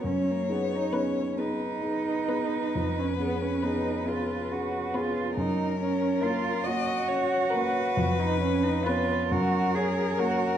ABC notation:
X:1
M:6/8
L:1/16
Q:3/8=46
K:F#
V:1 name="Violin"
c6 B6- | B12 | A6 d2 c2 B2- | B6 A6 |]
V:2 name="Violin"
z4 B2 z4 B2 | z4 B2 z4 B2 | z4 A2 z4 A2 | z4 B2 z4 A2 |]
V:3 name="Cello"
C A, B, D C2 D6- | D C B, C D2 E2 F2 E2 | D2 C2 E2 F6- | F D C D E2 F2 G2 F2 |]
V:4 name="Grand piano"
F,,2 [DG]2 [B,DG]2 [B,DG]2 [DG]2 [B,DG]2 | E,,2 [CG]2 [B,CG]2 [B,CG]2 [CG]2 [B,CG]2 | F,,2 [Cc]2 [A,Cc]2 [A,Cc]2 [Cc]2 [A,Cc]2 | E,,2 [Cc]2 [B,Cc]2 F,,2 [Cc]2 [A,Cc]2 |]